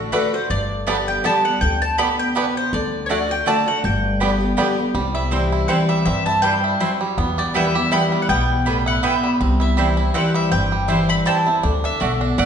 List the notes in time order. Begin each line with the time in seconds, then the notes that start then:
Already playing: D3 A3 D4 F#4
0.12 D3 A3 D4 F#4 B4 D5 F#5
0.33 D4 F#4 C5
0.50 G1 G2 D5
0.86 D3 G3 B3 D4 G4 D5 A5
1.08 G5
1.24 D3 G3 B3 D4 G4 D5 A5
1.44 B3 G4 F#5
1.61 D2 D3 G5
1.82 A5
1.98 B2 G3 B3 D4 G4 D5 A5 B5
2.19 G5
2.35 C3 G3 B3 D4 G4 B4 D5 A5
2.57 C5
2.73 D2 D3 D5
3.06 D3 A3 F#4 C#5 D5
3.10 A3 D4 F#4 D5 F#5
3.29 D4 F#4 G5
3.46 D3 A3 D4 F#4 D5 F#5 A5
3.66 D4 F#4 F#5
3.84 G1 G2 G5
4.20 D3 G3 B3 D4 G4 D5 G5
4.41 B3 G4
4.57 D3 G3 B3 D4 G4 D5 G5
4.77 B3 G4
4.95 C2 C3 G3
5.15 E4 E5
5.31 E3 G3 C4 E4 C5 G5
5.52 E4
5.68 E3 G3 C4 E4 C5 F#5 G5
5.89 G3 E5
6.05 G2 C4 E5
6.26 E4 A5
6.42 G2 G3 C4 E4 C5 G5
6.64 E4
6.80 F#3 C4 E4 C5 G5
7.01 G3
7.18 E2 B3
7.38 G4 D5
7.54 E3 G3 B3 E4 B4 E5 G5
7.75 B3 E4 G4
7.91 E3 G3 B3 E4 B4 G5 B5
8.12 G3
8.22 F#5
8.29 B1 B2 B3 G5
8.66 A2 G3 B3 E4 B4 G5
8.86 E4 F#5
9.03 B2 B3 E4 B4 E5 G5
9.24 G3
9.40 C2 C3 C4
9.60 E4 E5
9.77 E3 G3 C4 E4 C5 G5
9.97 C4 E4
10.14 E3 G3 C4 E4 C5 F#5 G5
10.34 G3 E5
10.51 G1 G2 C4 G5
10.72 G3
10.88 E3 G3 C4 E4 C5 G5
11.09 C4 B5
11.25 E3 G3 C4 E4 C5 G5 A5
11.45 C4 E4
11.63 D2 D3 D4
11.84 D4 E5
12.00 B1 B2 A3 F#4 D5 F#5
12.21 D4
12.38 A1 A2 A3 D4 F#4 D5 F#5